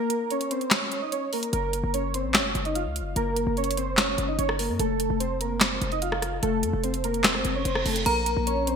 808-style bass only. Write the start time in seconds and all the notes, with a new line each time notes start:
1.53 F#1
1.84 F#1
2.24 A1
2.40 F#1
2.55 F#1
2.86 C#2
3.01 F#1
3.16 F#1
3.47 F#1
3.98 F1
4.08 F#1
4.18 F#1
4.39 F#1
4.69 F#2
4.79 F1
5.10 F1
5.82 F1
6.43 F1
6.63 F2
6.73 F1
7.24 D#1
7.35 F1
7.45 F1
7.65 F1
7.86 F1
8.06 A#1
8.37 A#1